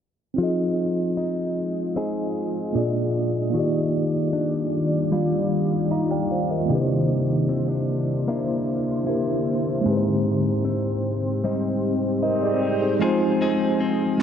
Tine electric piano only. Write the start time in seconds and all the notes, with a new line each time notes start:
0.34 C4 D#4
0.39 F4 G#4
0.43 D#5
2.73 A#3 D4 F4 G#4
2.78 D5
3.50 A#3 D#4
3.54 F4 G4
3.59 D5
5.91 F5 A#5
6.11 D5 G5
6.31 C5 F5
6.50 A#4 D#5
6.66 A#3 D4
6.70 E4 G4
6.75 B4
6.81 C5
9.05 A#3 D4 E4 G4
9.09 A#4
9.81 G#3 C4
9.86 D#4 G4
9.91 B4
9.97 C5
12.23 A#4 D#5
12.43 G#4 D5
12.62 G4 C5
12.82 D#4 G#4
12.99 G#3 C4 D#4 F4
13.04 C5
14.18 G#3 C4